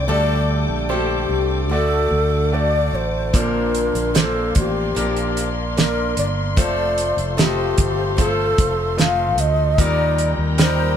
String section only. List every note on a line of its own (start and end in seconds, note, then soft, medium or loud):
0.00 1.67 G5 medium
0.00 3.30 D6 medium
0.08 1.69 A4 medium
0.08 3.31 D5 medium
1.71 3.32 A4 medium
1.71 3.32 F#5 medium
3.34 6.54 A#3 medium
3.34 6.54 D5 medium
3.34 6.54 F5 medium
3.34 9.74 C6 medium
6.57 9.75 A4 medium
6.57 9.75 C5 medium
6.57 9.75 F5 medium
9.79 10.97 D#4 medium
9.79 10.97 A#4 medium
9.79 10.97 G5 medium
9.79 10.97 A#5 medium